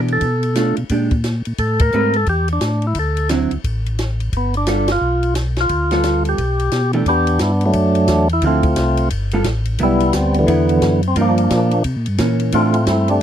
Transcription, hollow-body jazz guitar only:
0, 0, Header, 1, 2, 480
1, 0, Start_track
1, 0, Tempo, 342075
1, 310, Time_signature, 4, 2, 24, 8
1, 18557, End_track
2, 0, Start_track
2, 0, Title_t, "Hollow-body jazz guitar"
2, 0, Program_c, 0, 26
2, 0, Note_on_c, 0, 52, 53
2, 0, Note_on_c, 0, 59, 51
2, 0, Note_on_c, 0, 62, 54
2, 0, Note_on_c, 0, 67, 56
2, 305, Note_off_c, 0, 52, 0
2, 310, Note_off_c, 0, 59, 0
2, 312, Note_off_c, 0, 67, 0
2, 313, Note_off_c, 0, 62, 0
2, 782, Note_on_c, 0, 57, 53
2, 794, Note_on_c, 0, 62, 51
2, 802, Note_on_c, 0, 65, 54
2, 1060, Note_off_c, 0, 57, 0
2, 1066, Note_off_c, 0, 62, 0
2, 1069, Note_off_c, 0, 65, 0
2, 1275, Note_on_c, 0, 56, 51
2, 1286, Note_on_c, 0, 62, 58
2, 1290, Note_on_c, 0, 67, 55
2, 1547, Note_off_c, 0, 56, 0
2, 1553, Note_off_c, 0, 62, 0
2, 1555, Note_off_c, 0, 67, 0
2, 2718, Note_on_c, 0, 57, 54
2, 2722, Note_on_c, 0, 60, 60
2, 2729, Note_on_c, 0, 67, 59
2, 2735, Note_on_c, 0, 71, 71
2, 2991, Note_off_c, 0, 57, 0
2, 2993, Note_off_c, 0, 60, 0
2, 2997, Note_off_c, 0, 67, 0
2, 3000, Note_off_c, 0, 71, 0
2, 4628, Note_on_c, 0, 50, 52
2, 4642, Note_on_c, 0, 54, 59
2, 4643, Note_on_c, 0, 60, 65
2, 4644, Note_on_c, 0, 64, 57
2, 4908, Note_off_c, 0, 50, 0
2, 4914, Note_off_c, 0, 54, 0
2, 4915, Note_off_c, 0, 60, 0
2, 4916, Note_off_c, 0, 64, 0
2, 6562, Note_on_c, 0, 55, 54
2, 6567, Note_on_c, 0, 65, 66
2, 6568, Note_on_c, 0, 59, 58
2, 6572, Note_on_c, 0, 69, 61
2, 6835, Note_off_c, 0, 55, 0
2, 6837, Note_off_c, 0, 65, 0
2, 6838, Note_off_c, 0, 59, 0
2, 6840, Note_off_c, 0, 69, 0
2, 8306, Note_on_c, 0, 55, 50
2, 8308, Note_on_c, 0, 59, 58
2, 8317, Note_on_c, 0, 65, 55
2, 8318, Note_on_c, 0, 69, 58
2, 8927, Note_off_c, 0, 55, 0
2, 8928, Note_off_c, 0, 59, 0
2, 8933, Note_off_c, 0, 65, 0
2, 8933, Note_off_c, 0, 69, 0
2, 9729, Note_on_c, 0, 52, 62
2, 9742, Note_on_c, 0, 57, 64
2, 9742, Note_on_c, 0, 62, 60
2, 9754, Note_on_c, 0, 67, 65
2, 9896, Note_off_c, 0, 52, 0
2, 9902, Note_off_c, 0, 57, 0
2, 9902, Note_off_c, 0, 62, 0
2, 9908, Note_off_c, 0, 67, 0
2, 11835, Note_on_c, 0, 50, 56
2, 11836, Note_on_c, 0, 53, 62
2, 11845, Note_on_c, 0, 60, 58
2, 11848, Note_on_c, 0, 64, 65
2, 12105, Note_off_c, 0, 50, 0
2, 12106, Note_off_c, 0, 53, 0
2, 12110, Note_off_c, 0, 60, 0
2, 12112, Note_off_c, 0, 64, 0
2, 13097, Note_on_c, 0, 55, 69
2, 13101, Note_on_c, 0, 59, 66
2, 13109, Note_on_c, 0, 65, 73
2, 13114, Note_on_c, 0, 69, 74
2, 13255, Note_off_c, 0, 55, 0
2, 13257, Note_off_c, 0, 59, 0
2, 13261, Note_off_c, 0, 65, 0
2, 13263, Note_off_c, 0, 69, 0
2, 13747, Note_on_c, 0, 54, 62
2, 13750, Note_on_c, 0, 59, 58
2, 13764, Note_on_c, 0, 64, 61
2, 14019, Note_off_c, 0, 54, 0
2, 14020, Note_off_c, 0, 59, 0
2, 14028, Note_off_c, 0, 64, 0
2, 14690, Note_on_c, 0, 54, 66
2, 14703, Note_on_c, 0, 59, 67
2, 14704, Note_on_c, 0, 64, 67
2, 15419, Note_off_c, 0, 54, 0
2, 15425, Note_off_c, 0, 59, 0
2, 15425, Note_off_c, 0, 64, 0
2, 15664, Note_on_c, 0, 53, 59
2, 15672, Note_on_c, 0, 58, 65
2, 15679, Note_on_c, 0, 62, 61
2, 16385, Note_off_c, 0, 53, 0
2, 16389, Note_off_c, 0, 58, 0
2, 16392, Note_off_c, 0, 62, 0
2, 17099, Note_on_c, 0, 52, 49
2, 17105, Note_on_c, 0, 58, 51
2, 17119, Note_on_c, 0, 61, 56
2, 17561, Note_off_c, 0, 52, 0
2, 17578, Note_on_c, 0, 52, 56
2, 17584, Note_off_c, 0, 58, 0
2, 17589, Note_off_c, 0, 61, 0
2, 17592, Note_on_c, 0, 57, 64
2, 17594, Note_on_c, 0, 62, 76
2, 17852, Note_off_c, 0, 52, 0
2, 17859, Note_off_c, 0, 57, 0
2, 17860, Note_off_c, 0, 62, 0
2, 18557, End_track
0, 0, End_of_file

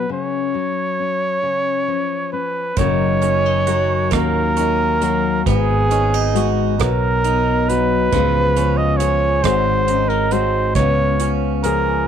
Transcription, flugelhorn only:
0, 0, Header, 1, 2, 480
1, 0, Start_track
1, 0, Tempo, 894188
1, 47, Time_signature, 6, 3, 24, 8
1, 3888, Tempo, 879765
1, 6525, End_track
2, 0, Start_track
2, 0, Title_t, "Flugelhorn"
2, 0, Program_c, 0, 56
2, 0, Note_on_c, 0, 71, 77
2, 57, Note_off_c, 0, 71, 0
2, 70, Note_on_c, 0, 73, 92
2, 1232, Note_off_c, 0, 73, 0
2, 1248, Note_on_c, 0, 71, 69
2, 1496, Note_on_c, 0, 73, 95
2, 1504, Note_off_c, 0, 71, 0
2, 2215, Note_off_c, 0, 73, 0
2, 2218, Note_on_c, 0, 70, 98
2, 2912, Note_off_c, 0, 70, 0
2, 2942, Note_on_c, 0, 68, 107
2, 3486, Note_off_c, 0, 68, 0
2, 3649, Note_on_c, 0, 70, 101
2, 4131, Note_on_c, 0, 71, 111
2, 4139, Note_off_c, 0, 70, 0
2, 4723, Note_on_c, 0, 75, 92
2, 4731, Note_off_c, 0, 71, 0
2, 4831, Note_on_c, 0, 73, 110
2, 4839, Note_off_c, 0, 75, 0
2, 5082, Note_on_c, 0, 72, 102
2, 5090, Note_off_c, 0, 73, 0
2, 5440, Note_on_c, 0, 70, 87
2, 5449, Note_off_c, 0, 72, 0
2, 5570, Note_on_c, 0, 72, 86
2, 5578, Note_off_c, 0, 70, 0
2, 5801, Note_off_c, 0, 72, 0
2, 5804, Note_on_c, 0, 73, 102
2, 6115, Note_off_c, 0, 73, 0
2, 6284, Note_on_c, 0, 70, 91
2, 6525, Note_off_c, 0, 70, 0
2, 6525, End_track
0, 0, End_of_file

